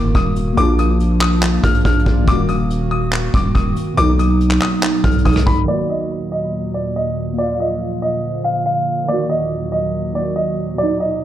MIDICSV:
0, 0, Header, 1, 6, 480
1, 0, Start_track
1, 0, Key_signature, -6, "minor"
1, 0, Tempo, 425532
1, 646, Time_signature, 4, 2, 24, 8
1, 12683, End_track
2, 0, Start_track
2, 0, Title_t, "Grand piano"
2, 0, Program_c, 0, 0
2, 172, Note_on_c, 0, 87, 88
2, 621, Note_off_c, 0, 87, 0
2, 648, Note_on_c, 0, 86, 100
2, 828, Note_off_c, 0, 86, 0
2, 892, Note_on_c, 0, 87, 83
2, 1341, Note_off_c, 0, 87, 0
2, 1369, Note_on_c, 0, 87, 91
2, 1819, Note_off_c, 0, 87, 0
2, 1844, Note_on_c, 0, 89, 88
2, 2025, Note_off_c, 0, 89, 0
2, 2087, Note_on_c, 0, 89, 81
2, 2538, Note_off_c, 0, 89, 0
2, 2568, Note_on_c, 0, 86, 113
2, 2747, Note_off_c, 0, 86, 0
2, 2806, Note_on_c, 0, 87, 91
2, 3258, Note_off_c, 0, 87, 0
2, 3284, Note_on_c, 0, 87, 86
2, 3737, Note_off_c, 0, 87, 0
2, 3771, Note_on_c, 0, 86, 82
2, 3949, Note_off_c, 0, 86, 0
2, 4002, Note_on_c, 0, 87, 86
2, 4456, Note_off_c, 0, 87, 0
2, 4483, Note_on_c, 0, 86, 113
2, 4665, Note_off_c, 0, 86, 0
2, 4730, Note_on_c, 0, 87, 80
2, 5180, Note_off_c, 0, 87, 0
2, 5208, Note_on_c, 0, 87, 85
2, 5659, Note_off_c, 0, 87, 0
2, 5682, Note_on_c, 0, 89, 72
2, 5864, Note_off_c, 0, 89, 0
2, 5925, Note_on_c, 0, 87, 91
2, 6106, Note_off_c, 0, 87, 0
2, 6164, Note_on_c, 0, 83, 83
2, 6345, Note_off_c, 0, 83, 0
2, 6408, Note_on_c, 0, 74, 108
2, 6588, Note_off_c, 0, 74, 0
2, 6650, Note_on_c, 0, 75, 78
2, 7100, Note_off_c, 0, 75, 0
2, 7127, Note_on_c, 0, 75, 81
2, 7578, Note_off_c, 0, 75, 0
2, 7606, Note_on_c, 0, 74, 70
2, 7787, Note_off_c, 0, 74, 0
2, 7853, Note_on_c, 0, 75, 82
2, 8301, Note_off_c, 0, 75, 0
2, 8330, Note_on_c, 0, 74, 95
2, 8509, Note_off_c, 0, 74, 0
2, 8573, Note_on_c, 0, 75, 79
2, 9022, Note_off_c, 0, 75, 0
2, 9049, Note_on_c, 0, 75, 88
2, 9499, Note_off_c, 0, 75, 0
2, 9525, Note_on_c, 0, 77, 83
2, 9706, Note_off_c, 0, 77, 0
2, 9767, Note_on_c, 0, 77, 76
2, 10218, Note_off_c, 0, 77, 0
2, 10247, Note_on_c, 0, 74, 107
2, 10427, Note_off_c, 0, 74, 0
2, 10485, Note_on_c, 0, 75, 91
2, 10937, Note_off_c, 0, 75, 0
2, 10964, Note_on_c, 0, 75, 80
2, 11417, Note_off_c, 0, 75, 0
2, 11451, Note_on_c, 0, 74, 76
2, 11630, Note_off_c, 0, 74, 0
2, 11684, Note_on_c, 0, 75, 78
2, 12137, Note_off_c, 0, 75, 0
2, 12163, Note_on_c, 0, 74, 107
2, 12345, Note_off_c, 0, 74, 0
2, 12411, Note_on_c, 0, 75, 78
2, 12683, Note_off_c, 0, 75, 0
2, 12683, End_track
3, 0, Start_track
3, 0, Title_t, "Synth keys"
3, 0, Program_c, 1, 88
3, 0, Control_c, 1, 64, 127
3, 0, Note_on_c, 1, 51, 69
3, 0, Note_on_c, 1, 58, 68
3, 0, Note_on_c, 1, 66, 80
3, 583, Note_off_c, 1, 51, 0
3, 584, Note_off_c, 1, 58, 0
3, 598, Note_on_c, 1, 58, 74
3, 634, Note_off_c, 1, 66, 0
3, 647, Note_on_c, 1, 65, 61
3, 663, Control_c, 1, 64, 0
3, 697, Note_on_c, 1, 62, 76
3, 836, Control_c, 1, 64, 127
3, 2268, Note_off_c, 1, 58, 0
3, 2293, Note_off_c, 1, 65, 0
3, 2305, Note_on_c, 1, 58, 55
3, 2319, Note_off_c, 1, 62, 0
3, 2330, Note_on_c, 1, 65, 47
3, 2355, Note_on_c, 1, 74, 62
3, 2516, Note_on_c, 1, 51, 68
3, 2552, Note_off_c, 1, 58, 0
3, 2566, Note_on_c, 1, 58, 64
3, 2568, Note_off_c, 1, 65, 0
3, 2580, Control_c, 1, 64, 0
3, 2581, Note_off_c, 1, 74, 0
3, 2615, Note_on_c, 1, 66, 73
3, 2778, Control_c, 1, 64, 127
3, 4423, Note_off_c, 1, 51, 0
3, 4439, Note_on_c, 1, 47, 71
3, 4448, Note_off_c, 1, 58, 0
3, 4473, Note_off_c, 1, 66, 0
3, 4489, Note_on_c, 1, 54, 67
3, 4503, Control_c, 1, 64, 0
3, 4539, Note_on_c, 1, 63, 76
3, 4681, Control_c, 1, 64, 127
3, 5874, Note_off_c, 1, 47, 0
3, 5899, Note_off_c, 1, 54, 0
3, 5901, Note_on_c, 1, 47, 49
3, 5924, Note_off_c, 1, 63, 0
3, 5926, Note_on_c, 1, 54, 48
3, 5951, Note_on_c, 1, 56, 55
3, 6362, Note_on_c, 1, 51, 66
3, 6394, Note_off_c, 1, 47, 0
3, 6406, Note_off_c, 1, 54, 0
3, 6412, Note_on_c, 1, 58, 59
3, 6419, Note_off_c, 1, 56, 0
3, 6423, Control_c, 1, 64, 0
3, 6461, Note_on_c, 1, 66, 71
3, 6631, Control_c, 1, 64, 127
3, 8258, Note_off_c, 1, 58, 0
3, 8266, Note_off_c, 1, 51, 0
3, 8272, Note_on_c, 1, 58, 62
3, 8316, Note_off_c, 1, 66, 0
3, 8321, Note_on_c, 1, 65, 64
3, 8342, Control_c, 1, 64, 0
3, 8371, Note_on_c, 1, 77, 75
3, 8530, Control_c, 1, 64, 127
3, 10180, Note_off_c, 1, 58, 0
3, 10198, Note_on_c, 1, 51, 68
3, 10206, Note_off_c, 1, 65, 0
3, 10231, Note_off_c, 1, 77, 0
3, 10248, Note_on_c, 1, 58, 62
3, 10263, Control_c, 1, 64, 0
3, 10298, Note_on_c, 1, 66, 78
3, 10428, Control_c, 1, 64, 127
3, 11398, Note_off_c, 1, 51, 0
3, 11423, Note_off_c, 1, 58, 0
3, 11423, Note_on_c, 1, 51, 50
3, 11448, Note_on_c, 1, 58, 49
3, 11449, Note_off_c, 1, 66, 0
3, 11473, Note_on_c, 1, 66, 58
3, 12114, Note_on_c, 1, 47, 67
3, 12155, Note_off_c, 1, 51, 0
3, 12164, Note_on_c, 1, 54, 56
3, 12167, Note_off_c, 1, 58, 0
3, 12180, Note_off_c, 1, 66, 0
3, 12182, Control_c, 1, 64, 0
3, 12214, Note_on_c, 1, 63, 77
3, 12397, Control_c, 1, 64, 127
3, 12683, Note_off_c, 1, 47, 0
3, 12683, Note_off_c, 1, 54, 0
3, 12683, Note_off_c, 1, 63, 0
3, 12683, End_track
4, 0, Start_track
4, 0, Title_t, "Ambient pad"
4, 0, Program_c, 2, 92
4, 0, Note_on_c, 2, 51, 82
4, 0, Note_on_c, 2, 58, 76
4, 0, Note_on_c, 2, 66, 90
4, 628, Note_off_c, 2, 51, 0
4, 628, Note_off_c, 2, 66, 0
4, 646, Note_on_c, 2, 53, 81
4, 646, Note_on_c, 2, 62, 93
4, 2547, Note_off_c, 2, 53, 0
4, 2547, Note_off_c, 2, 62, 0
4, 2567, Note_on_c, 2, 51, 80
4, 2568, Note_on_c, 2, 66, 90
4, 4442, Note_off_c, 2, 58, 0
4, 4468, Note_off_c, 2, 51, 0
4, 4468, Note_off_c, 2, 66, 0
4, 4487, Note_on_c, 2, 54, 83
4, 4487, Note_on_c, 2, 59, 77
4, 4487, Note_on_c, 2, 63, 87
4, 6388, Note_off_c, 2, 54, 0
4, 6388, Note_off_c, 2, 59, 0
4, 6388, Note_off_c, 2, 63, 0
4, 6406, Note_on_c, 2, 46, 70
4, 6407, Note_on_c, 2, 39, 76
4, 6407, Note_on_c, 2, 54, 86
4, 8307, Note_off_c, 2, 54, 0
4, 8308, Note_off_c, 2, 39, 0
4, 8327, Note_on_c, 2, 50, 88
4, 8327, Note_on_c, 2, 53, 72
4, 10228, Note_off_c, 2, 50, 0
4, 10228, Note_off_c, 2, 53, 0
4, 10247, Note_on_c, 2, 39, 79
4, 10247, Note_on_c, 2, 54, 90
4, 12121, Note_off_c, 2, 46, 0
4, 12148, Note_off_c, 2, 39, 0
4, 12148, Note_off_c, 2, 54, 0
4, 12167, Note_on_c, 2, 47, 79
4, 12167, Note_on_c, 2, 54, 75
4, 12167, Note_on_c, 2, 63, 89
4, 12683, Note_off_c, 2, 47, 0
4, 12683, Note_off_c, 2, 54, 0
4, 12683, Note_off_c, 2, 63, 0
4, 12683, End_track
5, 0, Start_track
5, 0, Title_t, "808-style bass"
5, 0, Program_c, 3, 38
5, 0, Note_on_c, 3, 30, 109
5, 157, Note_off_c, 3, 30, 0
5, 168, Note_on_c, 3, 27, 109
5, 628, Note_off_c, 3, 27, 0
5, 646, Note_on_c, 3, 34, 116
5, 1802, Note_off_c, 3, 34, 0
5, 1846, Note_on_c, 3, 34, 106
5, 2077, Note_off_c, 3, 34, 0
5, 2088, Note_on_c, 3, 34, 110
5, 2318, Note_off_c, 3, 34, 0
5, 2327, Note_on_c, 3, 34, 106
5, 2557, Note_off_c, 3, 34, 0
5, 2567, Note_on_c, 3, 27, 121
5, 3722, Note_off_c, 3, 27, 0
5, 3766, Note_on_c, 3, 27, 108
5, 3997, Note_off_c, 3, 27, 0
5, 4008, Note_on_c, 3, 27, 107
5, 4238, Note_off_c, 3, 27, 0
5, 4487, Note_on_c, 3, 35, 116
5, 5178, Note_off_c, 3, 35, 0
5, 5686, Note_on_c, 3, 35, 105
5, 5917, Note_off_c, 3, 35, 0
5, 5928, Note_on_c, 3, 35, 111
5, 6158, Note_off_c, 3, 35, 0
5, 6167, Note_on_c, 3, 35, 109
5, 6397, Note_off_c, 3, 35, 0
5, 12683, End_track
6, 0, Start_track
6, 0, Title_t, "Drums"
6, 165, Note_on_c, 9, 42, 72
6, 168, Note_on_c, 9, 36, 87
6, 278, Note_off_c, 9, 42, 0
6, 281, Note_off_c, 9, 36, 0
6, 405, Note_on_c, 9, 42, 91
6, 518, Note_off_c, 9, 42, 0
6, 646, Note_on_c, 9, 42, 80
6, 759, Note_off_c, 9, 42, 0
6, 887, Note_on_c, 9, 42, 88
6, 1000, Note_off_c, 9, 42, 0
6, 1129, Note_on_c, 9, 42, 76
6, 1242, Note_off_c, 9, 42, 0
6, 1366, Note_on_c, 9, 39, 94
6, 1479, Note_off_c, 9, 39, 0
6, 1606, Note_on_c, 9, 42, 84
6, 1607, Note_on_c, 9, 39, 124
6, 1718, Note_off_c, 9, 42, 0
6, 1720, Note_off_c, 9, 39, 0
6, 1846, Note_on_c, 9, 36, 104
6, 1847, Note_on_c, 9, 37, 68
6, 1847, Note_on_c, 9, 42, 80
6, 1907, Note_off_c, 9, 42, 0
6, 1907, Note_on_c, 9, 42, 65
6, 1959, Note_off_c, 9, 36, 0
6, 1960, Note_off_c, 9, 37, 0
6, 1967, Note_off_c, 9, 42, 0
6, 1967, Note_on_c, 9, 42, 57
6, 2027, Note_off_c, 9, 42, 0
6, 2027, Note_on_c, 9, 42, 47
6, 2086, Note_off_c, 9, 42, 0
6, 2086, Note_on_c, 9, 42, 72
6, 2088, Note_on_c, 9, 36, 92
6, 2166, Note_off_c, 9, 42, 0
6, 2166, Note_on_c, 9, 42, 54
6, 2201, Note_off_c, 9, 36, 0
6, 2247, Note_off_c, 9, 42, 0
6, 2247, Note_on_c, 9, 42, 42
6, 2327, Note_on_c, 9, 36, 105
6, 2359, Note_off_c, 9, 42, 0
6, 2440, Note_off_c, 9, 36, 0
6, 2567, Note_on_c, 9, 36, 123
6, 2567, Note_on_c, 9, 42, 79
6, 2679, Note_off_c, 9, 42, 0
6, 2680, Note_off_c, 9, 36, 0
6, 2808, Note_on_c, 9, 42, 87
6, 2921, Note_off_c, 9, 42, 0
6, 3050, Note_on_c, 9, 42, 76
6, 3163, Note_off_c, 9, 42, 0
6, 3526, Note_on_c, 9, 42, 82
6, 3527, Note_on_c, 9, 39, 120
6, 3639, Note_off_c, 9, 42, 0
6, 3640, Note_off_c, 9, 39, 0
6, 3766, Note_on_c, 9, 36, 106
6, 3770, Note_on_c, 9, 42, 78
6, 3879, Note_off_c, 9, 36, 0
6, 3883, Note_off_c, 9, 42, 0
6, 4005, Note_on_c, 9, 42, 72
6, 4008, Note_on_c, 9, 36, 89
6, 4118, Note_off_c, 9, 42, 0
6, 4121, Note_off_c, 9, 36, 0
6, 4245, Note_on_c, 9, 42, 92
6, 4358, Note_off_c, 9, 42, 0
6, 4487, Note_on_c, 9, 42, 81
6, 4599, Note_off_c, 9, 42, 0
6, 4728, Note_on_c, 9, 42, 86
6, 4840, Note_off_c, 9, 42, 0
6, 4970, Note_on_c, 9, 42, 75
6, 5083, Note_off_c, 9, 42, 0
6, 5086, Note_on_c, 9, 39, 74
6, 5199, Note_off_c, 9, 39, 0
6, 5206, Note_on_c, 9, 39, 93
6, 5206, Note_on_c, 9, 46, 59
6, 5319, Note_off_c, 9, 39, 0
6, 5319, Note_off_c, 9, 46, 0
6, 5446, Note_on_c, 9, 42, 80
6, 5447, Note_on_c, 9, 39, 124
6, 5558, Note_off_c, 9, 42, 0
6, 5560, Note_off_c, 9, 39, 0
6, 5686, Note_on_c, 9, 36, 103
6, 5687, Note_on_c, 9, 37, 65
6, 5687, Note_on_c, 9, 42, 49
6, 5767, Note_off_c, 9, 42, 0
6, 5767, Note_on_c, 9, 42, 55
6, 5799, Note_off_c, 9, 36, 0
6, 5800, Note_off_c, 9, 37, 0
6, 5847, Note_off_c, 9, 42, 0
6, 5847, Note_on_c, 9, 42, 62
6, 5927, Note_off_c, 9, 42, 0
6, 5927, Note_on_c, 9, 42, 65
6, 5928, Note_on_c, 9, 36, 88
6, 6006, Note_off_c, 9, 42, 0
6, 6006, Note_on_c, 9, 42, 73
6, 6041, Note_off_c, 9, 36, 0
6, 6046, Note_on_c, 9, 37, 95
6, 6087, Note_off_c, 9, 42, 0
6, 6087, Note_on_c, 9, 42, 79
6, 6159, Note_off_c, 9, 37, 0
6, 6165, Note_on_c, 9, 46, 72
6, 6167, Note_on_c, 9, 36, 111
6, 6200, Note_off_c, 9, 42, 0
6, 6278, Note_off_c, 9, 46, 0
6, 6280, Note_off_c, 9, 36, 0
6, 12683, End_track
0, 0, End_of_file